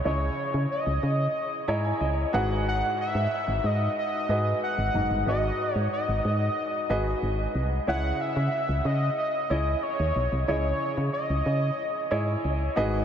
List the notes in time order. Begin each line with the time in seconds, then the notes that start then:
Already playing: E4 G#4 C#5 D#5
0.04 C#2 C#3 E4 G#4 C#5 D#5
0.54 C#3
0.71 D#5
0.87 C#2
1.03 C#3
1.68 G#2 E4 G#4 C#5 D#5 A#5
1.85 G#5
2.01 C#2 D#5
2.33 G#1 G#2 F#4 G#4 B4 F#5
2.68 F#5
3.01 E5
3.15 G#2
3.48 G#1
3.64 G#2 D#5
3.98 D#5
4.29 G#2 F#4 G#4 B4 D#5
4.63 F#5
4.78 G#1
4.94 F#1 G#2
5.11 G1
5.27 G#1 F#4 G#4 B4 D#5
5.75 G#2 C#5
5.93 D#5
6.09 G#1
6.25 G#2
6.89 G#1 F#4 G#4 B4 D#5
7.23 G#1
7.55 C2
7.87 C#2 C#3 E4 G#4 C#5 E5 F#5
8.21 E5
8.36 C#3
8.69 C#2
8.85 C#3 D#5
9.18 D#5
9.50 C#2 E4 G#4 C#5 D#5
9.83 C#5
10.00 D#2
10.16 B1
10.32 C2
10.48 C#2 C#3 E4 G#4 C#5 D#5
10.97 C#3
11.13 D#5
11.30 C#2
11.46 C#3
12.11 G#2 E4 G#4 C#5 D#5
12.45 C#2
12.76 G#1 G#2 F#4 G#4 B4 D#5